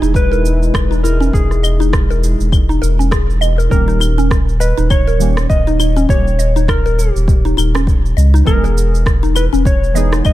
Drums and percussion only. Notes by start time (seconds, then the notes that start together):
0.03 shaker
0.14 kick, shaker
0.33 shaker
0.45 shaker
0.63 shaker
0.74 kick, cross-stick, claves, shaker
0.92 shaker
1.05 shaker
1.22 shaker
1.33 kick, shaker
1.51 cross-stick, shaker
1.64 claves, shaker
1.81 shaker
1.93 kick, cross-stick, shaker
2.11 shaker
2.24 shaker
2.41 shaker
2.52 kick, claves, shaker
2.70 shaker
2.83 shaker
3.00 shaker
3.12 kick, cross-stick, shaker
3.30 shaker
3.42 claves, shaker
3.60 shaker
3.71 kick, shaker
3.89 shaker
4.01 claves, shaker
4.19 shaker
4.31 kick, cross-stick, shaker
4.49 shaker
4.61 shaker
4.78 shaker
4.90 kick, claves, shaker
5.08 shaker
5.20 shaker
5.37 cross-stick, shaker
5.50 kick, shaker
5.68 shaker
5.80 claves, shaker
5.97 shaker
6.09 kick, shaker
6.27 shaker
6.39 shaker
6.57 shaker
6.68 kick, cross-stick, claves, shaker
6.87 shaker
6.99 shaker
7.16 shaker
7.28 kick, shaker
7.46 shaker
7.58 claves, shaker
7.75 cross-stick, shaker
7.87 kick, shaker
8.06 shaker
8.18 shaker
8.35 shaker
8.47 kick, claves, shaker
8.65 shaker
8.78 shaker
8.95 shaker
9.06 kick, cross-stick, shaker
9.24 shaker
9.36 claves, shaker
9.54 shaker
9.65 kick, shaker
9.84 shaker
9.96 shaker
10.13 cross-stick, shaker
10.25 kick, claves, shaker